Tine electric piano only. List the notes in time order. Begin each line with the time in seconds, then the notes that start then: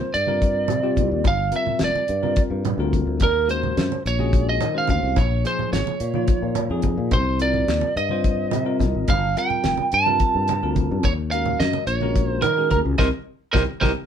0.27 G3 C4 F4 A#4
0.83 G3 C4 F4 G4
1.52 G3 C4 F4 A#4
2.23 G3 C4 F4 A#4
2.80 G3 C4 F4 A#4
3.48 G#3 C#4 F#4 A#4
4.19 G#3 C#4 F#4 G#4
4.74 G#3 C#4 F#4 C5
5.44 F3 A#3 D#4 G#4
6.14 F3 A#3 D#4 F4
6.70 F3 A#3 D#4 G#4
7.40 G3 C4 F4 A#4
8.11 G3 C4 F4 C5
8.65 G3 C4 F4 A#4
9.37 G3 C4 F4 A#4
10.07 G3 C4 F4 A#4
10.63 G3 C4 F4 A#4
11.33 G#3 C#4 F#4 A#4
12.02 G#3 C#4 F#4 A#4
12.57 G#3 C#4 F#4 G#4
12.98 C4 D#4 G4
13.55 C4 D#4 G4
13.82 C4 D#4 G4